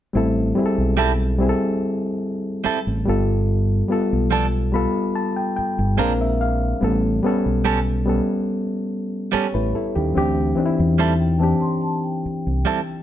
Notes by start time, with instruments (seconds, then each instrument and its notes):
0.13 fingered electric bass A1, reed electric piano G3 C4 E4 A4
0.55 reed electric piano G3 C4 E4
0.59 reed electric piano G#4
0.66 reed electric piano A4
0.78 fingered electric bass B1
0.97 clean electric guitar G3 C4 E4 A4
1.38 reed electric piano G3 C4 E4
1.42 reed electric piano G#4
1.49 reed electric piano A4
2.64 clean electric guitar G3 C4 E4 A4, muted fingered electric bass stroke
2.87 fingered electric bass A1
3.05 fingered electric bass G1, reed electric piano G3 B3 F4
3.10 reed electric piano A4
3.88 reed electric piano G3 B3 F4 A4
4.13 fingered electric bass B1
4.31 clean electric guitar F3 B3 D4 A4
4.72 reed electric piano G3 B3 F4 A4 B5
5.16 reed electric piano A5
5.36 reed electric piano G5
5.57 reed electric piano G5, muted fingered electric bass stroke
5.79 fingered electric bass G1
5.97 fingered electric bass A#1, reed electric piano G#3 C4 D4 A#4 F5, clean electric guitar G#3 C4 D4 A#4
6.21 reed electric piano E5
6.41 reed electric piano F5
6.81 fingered electric bass A1, reed electric piano G3 B3 C#4 A4
7.23 reed electric piano G3 B3 C#4 A4
7.46 fingered electric bass B1
7.65 clean electric guitar G3 B3 C#4 A4
8.06 reed electric piano G3 B3 C#4 A4
9.32 clean electric guitar G3 B3 C#4 A4, reed electric piano G4 C#5, muted fingered electric bass stroke
9.54 fingered electric bass A1, reed electric piano E4 B4
9.75 reed electric piano E4 A4
9.95 fingered electric bass D#2, reed electric piano C#4 G4
10.14 fingered electric bass D2, reed electric piano E3 C4 D4 G4
10.55 reed electric piano E3 C4 D4 D#4
10.66 reed electric piano E4
10.79 fingered electric bass E2
10.98 clean electric guitar G3 C4 E4 A4, vibraphone E5
11.20 vibraphone G5
11.39 reed electric piano E3 C4 D4, vibraphone A5
11.43 reed electric piano G4
11.61 vibraphone C6
11.82 vibraphone A5
12.04 vibraphone G5
12.26 muted fingered electric bass stroke
12.47 fingered electric bass C2
12.65 clean electric guitar G3 C4 E4 A4